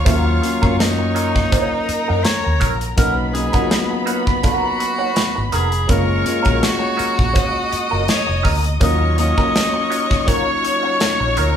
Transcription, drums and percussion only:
0.06 kick, closed hi-hat
0.43 closed hi-hat
0.63 kick
0.80 snare, closed hi-hat
1.16 closed hi-hat
1.36 kick, snare
1.52 kick, closed hi-hat
1.89 closed hi-hat
2.25 snare, closed hi-hat
2.61 kick, closed hi-hat
2.81 closed hi-hat
2.98 kick, closed hi-hat
3.35 closed hi-hat
3.53 kick, closed hi-hat
3.71 snare, closed hi-hat
4.07 closed hi-hat
4.27 kick
4.43 kick, closed hi-hat
4.80 closed hi-hat
5.16 snare, closed hi-hat
5.52 closed hi-hat
5.72 closed hi-hat
5.89 kick, closed hi-hat
6.26 closed hi-hat
6.45 kick, closed hi-hat
6.63 snare, closed hi-hat
6.99 closed hi-hat
7.19 kick
7.36 kick, closed hi-hat
7.73 closed hi-hat
8.08 snare, closed hi-hat
8.45 kick, open hi-hat
8.64 closed hi-hat
8.81 kick, closed hi-hat
9.18 closed hi-hat
9.38 kick
9.56 snare, closed hi-hat
9.92 closed hi-hat
10.11 kick, snare
10.28 kick, closed hi-hat
10.65 closed hi-hat
11.00 snare, closed hi-hat
11.37 closed hi-hat

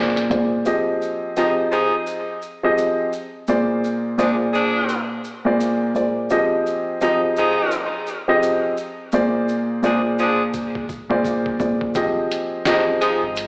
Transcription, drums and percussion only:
0.16 snare, closed hi-hat
0.31 kick, closed hi-hat
0.65 maracas
1.02 maracas
1.37 maracas
1.72 maracas
2.07 maracas
2.42 maracas
2.78 maracas
3.13 maracas
3.48 maracas
3.84 maracas
4.19 maracas
4.54 maracas
4.89 maracas
5.24 maracas
5.61 maracas
5.95 maracas
6.30 maracas
6.66 maracas
7.01 maracas
7.37 maracas
7.71 maracas
8.07 maracas
8.43 maracas
8.77 maracas
9.12 maracas
9.49 maracas
9.83 maracas
10.19 maracas
10.54 kick, maracas
10.75 kick
10.89 kick, maracas
11.11 kick
11.24 kick, maracas
11.46 kick
11.60 kick, maracas
11.81 kick
11.95 kick, closed hi-hat, maracas
12.31 closed hi-hat, maracas
12.65 snare, closed hi-hat, maracas
13.01 closed hi-hat, maracas
13.36 closed hi-hat, maracas

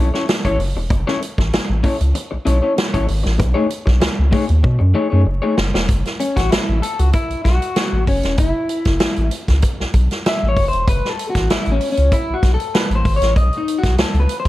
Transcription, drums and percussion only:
0.14 snare
0.29 snare, closed hi-hat
0.45 kick, closed hi-hat
0.60 open hi-hat
0.90 kick, closed hi-hat
1.08 snare
1.22 closed hi-hat
1.38 kick, snare
1.53 snare, closed hi-hat
1.84 kick, open hi-hat
2.01 closed hi-hat
2.15 closed hi-hat
2.46 closed hi-hat
2.78 snare, closed hi-hat
2.94 kick, closed hi-hat
3.08 open hi-hat
3.26 snare
3.40 kick, closed hi-hat
3.70 closed hi-hat
3.87 kick, snare
4.01 snare, closed hi-hat
4.32 kick, open hi-hat
4.49 closed hi-hat
4.64 kick
5.58 snare
5.75 snare
5.89 kick, closed hi-hat
6.05 snare, closed hi-hat
6.20 closed hi-hat
6.37 kick, snare, closed hi-hat
6.52 snare, closed hi-hat
6.83 closed hi-hat
6.99 closed hi-hat
7.13 kick, closed hi-hat
7.30 closed hi-hat
7.45 kick, snare, closed hi-hat
7.62 closed hi-hat
7.76 snare, closed hi-hat
8.07 kick, open hi-hat
8.23 snare, closed hi-hat
8.38 kick, closed hi-hat
8.69 closed hi-hat
8.85 kick, snare, closed hi-hat
9.00 snare, closed hi-hat
9.16 closed hi-hat
9.31 closed hi-hat
9.48 kick, snare, closed hi-hat
9.62 kick, closed hi-hat
9.80 snare
9.94 kick, closed hi-hat
10.11 snare, closed hi-hat
10.26 snare, closed hi-hat
10.57 kick, open hi-hat
10.73 closed hi-hat
10.88 kick, closed hi-hat
11.05 snare
11.19 closed hi-hat
11.35 kick, snare, closed hi-hat
11.50 snare, closed hi-hat
11.66 closed hi-hat
11.81 open hi-hat
11.97 closed hi-hat
12.12 kick, closed hi-hat
12.43 kick, snare, closed hi-hat
12.60 closed hi-hat
12.75 snare, closed hi-hat
12.91 closed hi-hat
13.05 kick, open hi-hat
13.22 snare, closed hi-hat
13.36 kick, closed hi-hat
13.53 closed hi-hat
13.68 closed hi-hat
13.83 kick, snare, closed hi-hat
13.98 snare, closed hi-hat
14.14 closed hi-hat
14.29 closed hi-hat

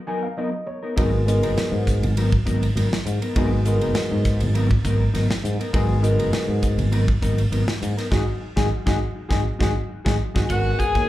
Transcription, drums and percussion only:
0.98 kick, ride
1.28 hi-hat pedal, ride
1.43 ride
1.58 snare, ride
1.87 kick, snare, hi-hat pedal, ride
2.03 ride
2.17 ride
2.32 kick
2.47 kick, hi-hat pedal, ride
2.63 ride
2.77 ride
2.93 snare
3.06 hi-hat pedal, ride
3.22 ride
3.36 kick, ride
3.65 hi-hat pedal, ride
3.81 ride
3.95 snare, ride
4.25 kick, snare, hi-hat pedal, ride
4.40 ride
4.55 ride
4.71 kick
4.85 kick, hi-hat pedal, ride
5.15 snare, ride
5.31 snare
5.45 hi-hat pedal, ride
5.61 ride
5.74 kick, ride
6.04 hi-hat pedal, ride
6.19 ride
6.33 snare, ride
6.63 kick, hi-hat pedal, ride
6.79 ride
6.92 ride
7.08 kick
7.22 kick, hi-hat pedal, ride
7.38 ride
7.52 ride
7.68 snare
7.83 hi-hat pedal, ride
7.98 snare, ride
8.12 kick, snare
8.57 kick, snare
8.87 kick, snare
9.31 kick, snare
9.61 kick, snare
10.06 kick, snare
10.36 kick, snare
10.50 kick, hi-hat pedal, ride
10.80 kick, hi-hat pedal, ride
10.95 kick, snare, ride

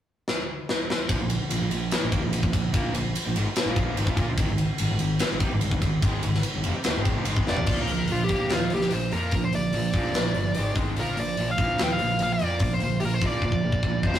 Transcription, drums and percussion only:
0.28 snare
0.69 snare
0.90 snare
1.09 kick, ride
1.30 ride
1.50 ride
1.71 ride
1.91 snare, ride
2.12 kick, ride
2.33 ride
2.43 kick
2.53 kick, ride
2.74 kick, ride
2.95 ride
3.15 ride
3.36 ride
3.56 snare, ride
3.76 kick, ride
3.97 ride
4.07 kick
4.17 kick, ride
4.38 kick, ride
4.58 ride
4.78 ride
4.99 ride
5.19 snare, ride
5.40 kick, ride
5.61 ride
5.71 kick
5.82 kick, ride
6.02 kick, ride
6.23 ride
6.34 snare
6.43 ride
6.64 ride
6.84 snare, ride
7.05 kick, ride
7.25 ride
7.36 kick
7.47 snare
7.57 floor tom
7.66 kick, crash
7.87 open hi-hat
8.08 open hi-hat
8.29 kick, open hi-hat
8.50 snare, open hi-hat
8.70 open hi-hat
8.81 snare
8.91 open hi-hat
9.12 open hi-hat
9.31 kick, open hi-hat
9.53 open hi-hat
9.73 open hi-hat
9.93 kick, open hi-hat
10.14 snare, open hi-hat
10.35 open hi-hat
10.55 open hi-hat
10.75 kick, open hi-hat
10.97 open hi-hat
11.17 open hi-hat
11.37 open hi-hat
11.58 kick, open hi-hat
11.78 snare, open hi-hat
11.99 open hi-hat
12.19 open hi-hat
12.39 open hi-hat
12.59 kick, open hi-hat
12.80 open hi-hat
13.00 open hi-hat
13.21 kick, open hi-hat
13.42 kick
13.52 kick
13.72 kick
13.83 kick
14.03 kick
14.14 snare

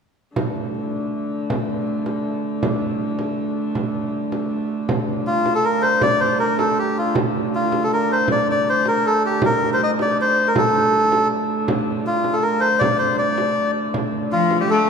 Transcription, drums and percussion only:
0.36 frame drum
0.55 frame drum
0.75 frame drum
1.50 frame drum
1.69 frame drum
1.87 frame drum
2.06 frame drum
2.63 frame drum
2.82 frame drum
3.00 frame drum
3.19 frame drum
3.75 frame drum
4.32 frame drum
4.51 frame drum
4.89 frame drum
5.26 frame drum
5.46 frame drum
5.83 frame drum
6.01 frame drum
6.40 frame drum
6.59 frame drum
6.97 frame drum
7.15 frame drum
7.53 frame drum
7.72 frame drum
8.10 frame drum
8.28 frame drum
8.47 frame drum
8.67 frame drum
8.85 frame drum
9.42 frame drum
9.80 frame drum
9.99 frame drum
10.37 frame drum
10.56 frame drum
10.94 frame drum
11.12 frame drum
11.50 frame drum
11.68 frame drum
12.06 frame drum
12.24 frame drum
12.62 frame drum
12.81 frame drum
13.38 frame drum
13.76 frame drum
13.94 frame drum
14.32 frame drum
14.51 frame drum

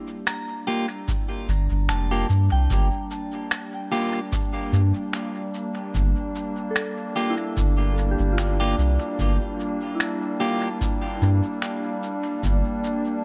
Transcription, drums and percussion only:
0.27 finger snap, shaker
1.08 kick, shaker
1.49 shaker
1.89 finger snap, shaker
2.30 shaker
2.70 kick, shaker
3.11 shaker
3.51 finger snap, shaker
4.32 kick, shaker
4.73 shaker
5.13 finger snap, shaker
5.54 shaker
5.95 kick, shaker
6.35 shaker
6.76 finger snap, shaker
7.16 shaker
7.57 kick, shaker
7.98 shaker
8.38 finger snap, shaker
8.79 shaker
9.19 kick, shaker
9.60 shaker
10.00 finger snap, shaker
10.81 kick, shaker
11.22 shaker
11.62 finger snap, shaker
12.03 shaker
12.43 kick, shaker
12.84 shaker

